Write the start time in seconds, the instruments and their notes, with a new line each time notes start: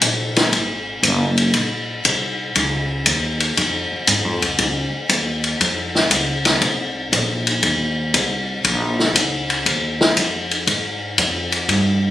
0.01 upright bass A#1, kick, hi-hat pedal, ride
0.36 snare, ride
0.52 upright bass G#1, kick, ride
1.03 upright bass F#1, kick, hi-hat pedal, ride
1.38 ride
1.54 upright bass A#1, kick, ride
2.05 upright bass C2, kick, hi-hat pedal, ride
2.55 upright bass C#2, kick, ride
3.06 upright bass D#2, kick, hi-hat pedal, ride
3.40 ride
3.57 upright bass F2, kick, ride
3.92 muted upright bass stroke
4.07 upright bass G#2, kick, hi-hat pedal, ride
4.25 upright bass F2
4.41 upright bass C#2, ride
4.59 upright bass C#2, kick, ride
4.93 muted upright bass stroke
5.09 upright bass D#2, kick, hi-hat pedal, ride
5.44 ride
5.60 upright bass F2, kick, ride
5.95 snare
6.11 upright bass C#2, kick, hi-hat pedal, ride
6.45 snare, ride
6.62 upright bass C2, kick, ride
7.12 upright bass A#1, kick, hi-hat pedal, ride
7.47 ride
7.63 upright bass D#2, kick, ride
8.14 upright bass C2, kick, hi-hat pedal, ride
8.64 upright bass A#1, kick, ride
8.99 snare
9.15 upright bass C#2, kick, hi-hat pedal, ride
9.50 ride
9.66 upright bass D#2, kick, ride
10.01 snare
10.16 upright bass F2, kick, hi-hat pedal, ride
10.51 ride
10.67 upright bass G#2, kick, ride
11.18 upright bass F2, kick, hi-hat pedal, ride
11.52 ride
11.69 upright bass G2, kick, ride